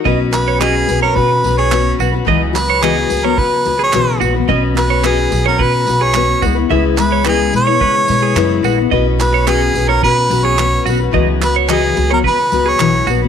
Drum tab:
TB |-x-x-x-x|-x-x-x-x|-x-x-x-x|-x-x-x-x|
CP |-xx---x-|-xx---x-|-xx---x-|-xx---x-|
BD |o---o---|o---o---|o---o--o|----o---|

TB |-x-x-x-x|-x-x-x-x|
CP |-xx---x-|-xx---x-|
BD |o---o---|o---o---|